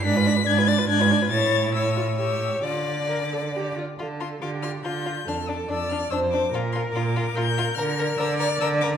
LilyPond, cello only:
\new Staff \with { instrumentName = "Cello" } { \clef bass \time 3/4 \key d \minor \tempo 4 = 143 gis,4 gis,4 gis,4 | a,2. | d2~ d8 r8 | d4 d4 d4 |
f,4 f,4 f,4 | bes,4 bes,4 bes,4 | d4 d4 d4 | }